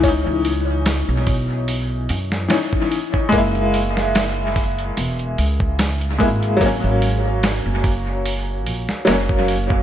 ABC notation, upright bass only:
X:1
M:4/4
L:1/16
Q:"Swing 16ths" 1/4=73
K:C#dor
V:1 name="Upright bass" clef=bass
C,, C,,4 B,,,4- B,,, F,,2 z4 | F,,,8 E,,,2 C,,4 G,,,2- | G,,, G,,,4 F,,,4- F,,, A,,, z F,,,4 |]